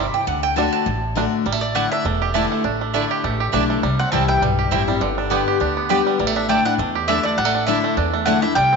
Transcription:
Already playing: steel-string acoustic guitar C3, mandolin B5
0.14 mandolin G5
0.27 upright bass D2, steel-string acoustic guitar D3, mandolin F#5
0.43 mandolin G5
0.56 steel-string acoustic guitar D3 A3 D4 F#4, five-string banjo A3 D4, mandolin A5
0.73 mandolin A5
0.86 upright bass A1, steel-string acoustic guitar A2
1.15 steel-string acoustic guitar D3 A3 D4 F#4, five-string banjo A3 D4
1.46 upright bass A1, steel-string acoustic guitar A2, five-string banjo G3
1.52 five-string banjo A3
1.61 mandolin D5
1.75 steel-string acoustic guitar D3 A3 D4 E4, mandolin A3 E4 D5 F#5 A5, five-string banjo A3
1.92 five-string banjo D4, mandolin E5
2.05 upright bass E1, steel-string acoustic guitar E2, five-string banjo A3
2.22 five-string banjo G4
2.34 steel-string acoustic guitar D3 A3 D4 E4, mandolin A3 E4 D5 A5, five-string banjo D4
2.52 five-string banjo A3
2.64 upright bass A1, steel-string acoustic guitar A2, five-string banjo D4
2.81 five-string banjo A3
2.94 steel-string acoustic guitar D3 A3 D4 E4, mandolin A3 E4 D5 A5, five-string banjo D4
3.11 five-string banjo G4
3.24 upright bass A1, steel-string acoustic guitar E2, five-string banjo A3
3.40 five-string banjo G4
3.52 upright bass B1, steel-string acoustic guitar D3 A3 D4 E4, mandolin A3 E4 D5 A5, five-string banjo D4
3.70 five-string banjo A3
3.83 upright bass C2, steel-string acoustic guitar C3, five-string banjo G3
3.99 five-string banjo C4, mandolin F#5
4.12 upright bass C2, steel-string acoustic guitar E3 G3 C4 E4, five-string banjo G3, mandolin C4 E4 C5 G5 A5
4.28 five-string banjo E4, mandolin G5
4.42 upright bass B1, steel-string acoustic guitar G2, five-string banjo G3
4.59 five-string banjo G4
4.71 upright bass A1, steel-string acoustic guitar E3 G3 C4 E4, mandolin C4 E4 C5 G5, five-string banjo E4
4.88 five-string banjo G3, steel-string acoustic guitar C4 E4
5.01 upright bass G1, steel-string acoustic guitar G2, five-string banjo D3
5.18 five-string banjo D4
5.30 steel-string acoustic guitar D3 G3 B3 G4, mandolin B3 G4 D5 G5, five-string banjo B3
5.48 five-string banjo G4
5.60 upright bass D2, steel-string acoustic guitar D3, five-string banjo D4
5.77 five-string banjo B3
5.89 steel-string acoustic guitar D3 G3 B3 G4, mandolin B3 G4 D5 G5, five-string banjo G4
6.07 five-string banjo G3
6.19 upright bass A1, steel-string acoustic guitar A2, five-string banjo G3
6.27 five-string banjo A3
6.36 five-string banjo D4, mandolin E5
6.49 steel-string acoustic guitar D3 A3 D4 E4, mandolin A3 E4 D5 G5 A5, five-string banjo A3
6.65 five-string banjo D4, steel-string acoustic guitar D4 E4, mandolin F#5
6.78 upright bass E2, steel-string acoustic guitar E2, five-string banjo A3
6.95 five-string banjo G4
7.08 steel-string acoustic guitar D3 A3 D4 E4, mandolin A3 E4 D5 E5 A5, five-string banjo D4
7.23 five-string banjo A3, mandolin D5
7.38 upright bass A1, steel-string acoustic guitar A2, five-string banjo G3, mandolin F#5
7.45 five-string banjo A3
7.55 five-string banjo D4
7.67 steel-string acoustic guitar D3 A3 D4 E4, mandolin A3 E4 D5 E5 A5, five-string banjo D4
7.84 five-string banjo A3
7.97 steel-string acoustic guitar E2, upright bass E2, five-string banjo D4
8.13 five-string banjo A3
8.26 steel-string acoustic guitar D3 A3 D4 E4, mandolin A3 E4 D5 F#5 A5, five-string banjo D4
8.42 five-string banjo A3, steel-string acoustic guitar D4 E4, mandolin E5
8.55 upright bass C2, steel-string acoustic guitar C3, five-string banjo G3, mandolin G5
8.73 five-string banjo C4

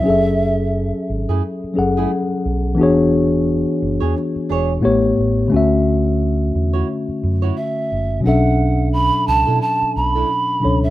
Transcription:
Already playing: pan flute E5
0.01 tine electric piano F#3 C#4
0.06 fingered electric bass F#1, tine electric piano G#4 A4
0.10 tine electric piano E5
1.10 fingered electric bass G#1
1.29 fingered electric bass F#2, nylon-string guitar A3 E4 G#4
1.64 muted fingered electric bass stroke
1.74 fingered electric bass F#1, tine electric piano F#3 C#4 G#4 A4
1.79 tine electric piano F#5
1.97 nylon-string guitar A3 E4 G#4
2.45 fingered electric bass B1
2.75 tine electric piano E3 B3 D4
2.79 fingered electric bass E1, tine electric piano F#4 G#4 C#5
3.82 fingered electric bass F#1
4.00 fingered electric bass E2, nylon-string guitar D4 G#4 C#5
4.16 muted nylon-string guitar stroke
4.36 muted fingered electric bass stroke
4.49 fingered electric bass E1, nylon-string guitar D4 G#4 C#5
4.81 tine electric piano A2 A3 B3 G4
4.85 fingered electric bass A1, tine electric piano C#5
5.19 fingered electric bass A1
5.48 tine electric piano D3 A3
5.52 fingered electric bass D2, tine electric piano C#4 F#4
5.57 tine electric piano E5
6.55 fingered electric bass E2
6.73 nylon-string guitar E4 F#4 C#5
7.08 muted fingered electric bass stroke
7.23 fingered electric bass F#2
7.42 nylon-string guitar E4 F#4 C#5
7.57 pan flute E5
7.92 fingered electric bass F#1
8.20 tine electric piano B2 F#3 C#4
8.25 fingered electric bass B1, tine electric piano D4 A4 E5, pan flute F#5
8.93 pan flute B5
9.28 fingered electric bass C#2, pan flute A5
9.46 fingered electric bass B2, nylon-string guitar D4 E4 A4
9.62 pan flute A5
9.82 muted fingered electric bass stroke
9.96 fingered electric bass B1, pan flute B5
10.15 nylon-string guitar D4 E4 A4
10.61 tine electric piano B2 F#3 C#4 D4 A4
10.65 fingered electric bass C#2, tine electric piano C#5
10.84 pan flute E5

